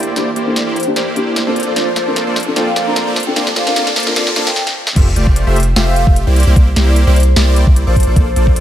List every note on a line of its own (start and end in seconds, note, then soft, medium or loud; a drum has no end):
0.00 1.55 E3 medium
0.00 1.55 A#3 medium
0.00 4.52 D4 medium
0.00 1.55 G4 medium
0.00 3.32 C5 medium
0.00 closed hi-hat medium
0.00 riser medium
0.07 0.14 A#3 medium
0.07 0.14 E4 medium
0.07 0.14 G4 medium
0.07 0.14 C5 medium
0.07 0.14 D5 loud
0.15 0.27 A#3 medium
0.15 0.28 A#3 medium
0.15 0.28 D4 medium
0.15 0.28 E4 medium
0.15 0.28 G4 medium
0.15 0.28 C5 medium
0.15 0.28 D5 loud
0.15 snare medium
0.15 closed hi-hat medium
0.36 0.64 A#3 medium
0.36 0.64 E4 medium
0.36 0.64 G4 medium
0.36 0.64 C5 medium
0.36 0.64 D5 medium
0.36 closed hi-hat medium
0.46 0.84 A#3 medium
0.46 0.84 D4 medium
0.46 0.85 E4 medium
0.46 0.85 A4 medium
0.56 snare medium
0.56 closed hi-hat medium
0.67 0.78 A#3 medium
0.67 0.78 E4 medium
0.67 0.78 G4 medium
0.67 0.78 C5 medium
0.67 0.78 D5 loud
0.76 0.93 C5 medium
0.76 closed hi-hat soft
0.80 closed hi-hat medium
0.83 0.97 A#3 medium
0.83 0.97 D4 medium
0.83 closed hi-hat medium
0.87 0.97 E4 medium
0.87 0.98 G4 loud
0.96 1.24 A#3 medium
0.96 1.24 E4 medium
0.96 1.24 G4 medium
0.96 1.24 C5 medium
0.96 1.24 D5 loud
0.96 snare medium
0.96 closed hi-hat medium
1.15 1.33 A#3 loud
1.15 1.34 D4 medium
1.15 1.34 E4 medium
1.15 1.34 G4 loud
1.15 closed hi-hat medium
1.27 1.44 A#3 medium
1.27 1.44 E4 medium
1.27 1.44 G4 medium
1.27 1.44 C5 medium
1.27 1.44 D5 medium
1.36 snare medium
1.36 closed hi-hat medium
1.46 1.64 A#3 medium
1.46 1.64 C4 medium
1.46 1.64 D4 medium
1.46 1.64 F4 medium
1.46 1.65 F4 medium
1.46 1.64 A4 medium
1.46 1.65 A4 medium
1.46 1.60 C5 medium
1.46 1.64 C5 medium
1.46 1.64 D5 loud
1.56 4.53 F3 medium
1.56 4.53 A#3 medium
1.56 4.53 A5 medium
1.56 closed hi-hat soft
1.60 closed hi-hat medium
1.63 2.07 C5 medium
1.63 1.74 D5 loud
1.63 closed hi-hat medium
1.67 1.74 A#3 medium
1.67 1.74 F4 medium
1.67 1.74 A4 medium
1.67 1.74 C5 medium
1.75 1.88 A#3 medium
1.75 1.87 C4 medium
1.75 1.88 D4 medium
1.75 1.88 F4 medium
1.75 1.88 A4 medium
1.75 1.88 C5 medium
1.75 1.88 D5 loud
1.75 snare medium
1.75 closed hi-hat medium
1.96 2.24 A#3 medium
1.96 2.24 F4 medium
1.96 2.24 A4 medium
1.96 2.24 C5 medium
1.96 2.24 D5 medium
1.96 snare medium
1.96 closed hi-hat medium
2.06 2.44 C4 medium
2.06 2.44 D4 medium
2.06 2.45 F4 medium
2.06 2.45 A#4 medium
2.16 snare medium
2.16 closed hi-hat medium
2.27 2.38 A#3 medium
2.27 2.38 F4 medium
2.27 2.38 A4 medium
2.27 2.38 C5 medium
2.27 2.38 D5 loud
2.36 snare medium
2.36 closed hi-hat soft
2.40 closed hi-hat medium
2.43 2.54 C4 medium
2.43 2.54 D4 medium
2.43 closed hi-hat medium
2.47 2.55 F4 medium
2.47 2.55 A4 loud
2.55 2.68 A#3 medium
2.55 2.67 C4 medium
2.55 2.68 D4 medium
2.55 2.68 F4 medium
2.55 2.68 A4 medium
2.55 2.68 C5 medium
2.55 2.68 D5 loud
2.55 2.65 G5 medium
2.55 snare medium
2.55 closed hi-hat medium
2.67 2.73 F5 medium
2.76 3.04 A#3 medium
2.76 3.04 F4 medium
2.76 3.04 A4 medium
2.76 3.04 C5 medium
2.76 3.04 D5 medium
2.76 2.83 F5 medium
2.76 snare medium
2.76 closed hi-hat medium
2.86 3.24 C4 medium
2.86 3.24 D4 medium
2.86 3.25 F4 medium
2.86 3.25 A#4 medium
2.86 3.04 A#5 medium
2.96 snare medium
2.96 closed hi-hat medium
3.07 3.18 A#3 medium
3.07 3.18 F4 medium
3.07 3.18 A4 medium
3.07 3.18 C5 medium
3.07 3.18 D5 loud
3.16 snare medium
3.16 closed hi-hat soft
3.20 closed hi-hat medium
3.23 3.34 C4 loud
3.23 3.34 D4 medium
3.23 3.40 G5 medium
3.23 closed hi-hat medium
3.27 3.35 F4 medium
3.27 3.35 A4 loud
3.35 3.48 A#3 loud
3.35 3.47 C4 medium
3.35 3.48 D4 medium
3.35 3.48 F4 medium
3.35 4.55 G4 medium
3.35 3.48 A4 medium
3.35 3.48 C5 medium
3.35 3.48 D5 loud
3.35 snare medium
3.35 closed hi-hat medium
3.47 snare medium
3.56 3.75 A#3 medium
3.56 3.75 F4 medium
3.56 3.75 A4 medium
3.56 3.75 C5 medium
3.56 3.75 D5 medium
3.56 3.63 F5 medium
3.56 snare medium
3.56 closed hi-hat medium
3.66 3.74 C4 medium
3.66 3.74 D4 medium
3.66 3.75 F4 medium
3.66 3.75 A#4 medium
3.66 3.73 F5 medium
3.66 snare medium
3.75 3.88 A#3 medium
3.75 3.87 C4 medium
3.75 3.88 D4 medium
3.75 3.88 F4 medium
3.75 3.88 A4 medium
3.75 3.88 C5 medium
3.75 3.88 D5 loud
3.75 snare loud
3.75 closed hi-hat medium
3.87 snare medium
3.96 4.15 A#3 medium
3.96 4.15 F4 medium
3.96 4.15 A4 medium
3.96 4.15 C5 medium
3.96 4.15 D5 medium
3.96 snare loud
3.96 closed hi-hat soft
4.00 closed hi-hat medium
4.03 4.14 C4 medium
4.03 4.14 D4 medium
4.03 closed hi-hat medium
4.07 4.15 F4 medium
4.07 4.15 A#4 loud
4.07 snare medium
4.15 4.28 A#3 loud
4.15 4.27 C4 medium
4.15 4.28 D4 medium
4.15 4.28 F4 medium
4.15 4.28 A4 medium
4.15 4.28 A4 loud
4.15 4.28 C5 medium
4.15 4.28 D5 loud
4.15 snare loud
4.15 closed hi-hat medium
4.27 snare medium
4.35 4.48 A#3 loud
4.35 4.47 C4 medium
4.35 4.48 D4 medium
4.35 4.48 F4 medium
4.35 4.48 A4 loud
4.35 4.48 A4 medium
4.35 4.48 C5 medium
4.35 4.48 D5 loud
4.35 snare loud
4.35 closed hi-hat medium
4.47 4.56 G5 medium
4.47 snare loud
4.56 snare medium
4.67 snare medium
4.87 snare medium
4.96 5.14 F1 loud
4.96 5.08 A3 loud
4.96 5.08 F4 medium
4.96 5.08 G4 medium
4.96 5.08 C5 medium
4.96 5.08 E5 loud
4.96 kick loud
4.96 closed hi-hat medium
4.96 crash loud
4.96 sub drop medium
5.16 5.45 F1 loud
5.16 5.44 A3 medium
5.16 5.44 F4 medium
5.16 5.44 G4 medium
5.16 5.44 C5 medium
5.16 5.44 D5 medium
5.16 closed hi-hat medium
5.27 kick medium
5.36 closed hi-hat medium
5.47 5.74 F1 loud
5.47 5.58 A3 loud
5.47 5.58 F4 medium
5.47 5.58 G4 medium
5.47 5.58 C5 medium
5.47 5.58 E5 loud
5.56 closed hi-hat medium
5.60 closed hi-hat medium
5.63 closed hi-hat medium
5.76 6.05 F1 medium
5.76 6.04 A3 loud
5.76 6.04 F4 medium
5.76 6.04 G4 medium
5.76 6.04 C5 medium
5.76 6.04 E5 loud
5.76 5.85 G5 medium
5.76 snare loud
5.76 closed hi-hat medium
5.87 5.93 F5 medium
5.96 6.03 F5 medium
5.96 closed hi-hat medium
6.07 6.25 F1 loud
6.07 6.24 A3 medium
6.07 6.24 F4 medium
6.07 6.24 G4 medium
6.07 6.24 C5 medium
6.07 kick loud
6.16 closed hi-hat medium
6.27 6.45 C2 loud
6.27 6.44 A#3 medium
6.27 6.44 E4 medium
6.27 6.44 G4 medium
6.27 6.44 C5 medium
6.27 6.44 D5 loud
6.36 closed hi-hat medium
6.40 closed hi-hat medium
6.43 6.54 C2 loud
6.43 6.54 A#3 medium
6.43 6.54 E4 medium
6.43 6.54 G4 medium
6.43 6.54 C5 medium
6.43 closed hi-hat medium
6.47 6.54 D5 loud
6.56 6.74 C2 medium
6.56 6.68 A#3 loud
6.56 6.68 G4 medium
6.56 6.68 C5 medium
6.56 kick loud
6.56 closed hi-hat medium
6.76 7.05 C2 loud
6.76 7.04 A#3 medium
6.76 7.04 E4 medium
6.76 7.04 G4 medium
6.76 7.04 C5 medium
6.76 7.04 D5 medium
6.76 snare medium
6.76 closed hi-hat medium
6.96 closed hi-hat medium
7.07 7.34 C2 loud
7.07 7.18 A#3 loud
7.07 7.18 E4 medium
7.07 7.18 G4 medium
7.07 7.18 C5 medium
7.07 7.18 D5 loud
7.16 7.33 C5 medium
7.16 closed hi-hat medium
7.20 closed hi-hat medium
7.23 closed hi-hat medium
7.36 7.65 C2 medium
7.36 7.64 A#3 medium
7.36 7.64 E4 medium
7.36 7.64 G4 medium
7.36 7.64 C5 medium
7.36 7.64 D5 loud
7.36 snare loud
7.36 closed hi-hat medium
7.56 closed hi-hat medium
7.67 7.85 C2 loud
7.67 7.84 A#3 medium
7.67 7.84 G4 medium
7.67 7.84 D5 medium
7.67 kick loud
7.76 closed hi-hat medium
7.87 8.05 A#1 loud
7.87 8.04 A#3 medium
7.87 8.04 F4 medium
7.87 8.04 A4 medium
7.87 8.01 C5 medium
7.87 8.04 C5 medium
7.87 8.04 D5 loud
7.96 kick medium
7.96 closed hi-hat medium
8.00 closed hi-hat medium
8.03 8.14 A#3 medium
8.03 8.14 F4 medium
8.03 8.14 A4 medium
8.03 8.14 C5 medium
8.03 8.47 C5 medium
8.03 8.14 D5 loud
8.03 closed hi-hat medium
8.07 8.14 A#1 loud
8.16 8.34 A#1 loud
8.16 8.28 A#3 loud
8.16 8.28 F4 medium
8.16 8.28 A4 medium
8.16 8.28 C5 medium
8.16 8.28 D5 loud
8.16 kick loud
8.16 closed hi-hat medium
8.36 8.60 A#1 loud
8.36 8.60 A#3 medium
8.36 8.60 F4 medium
8.36 8.60 A4 medium
8.36 8.60 C5 medium
8.36 8.60 D5 medium
8.36 closed hi-hat medium
8.47 kick medium
8.56 closed hi-hat medium